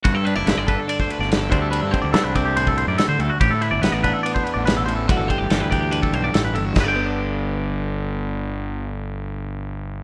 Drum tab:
CC |----------------|----------------|----------------|----------------|
RD |x-x-x-x-x-x-x-x-|x-x-x-x-x-x-x-x-|x-x-x-x-x-x-x-x-|x-x-x-x-x-x-x-x-|
SD |----o------oo---|----o-------o---|----o-------o---|----o-------o---|
BD |o-----o--o----o-|--o---o--o------|o-----o--o------|o-o---o--o------|

CC |x---------------|----------------|
RD |----------------|----------------|
SD |o---------------|----------------|
BD |o---------------|----------------|